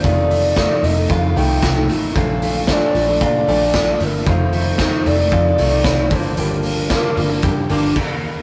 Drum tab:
CC |--------|--------|--------|------x-|
HH |xoxoxoxo|xoxoxoxo|xoxoxoxo|xoxoxo--|
SD |--o---o-|--o---o-|--o---o-|--o-----|
BD |o-o-o-o-|o-o-o-o-|o-o-o-oo|--o-o-o-|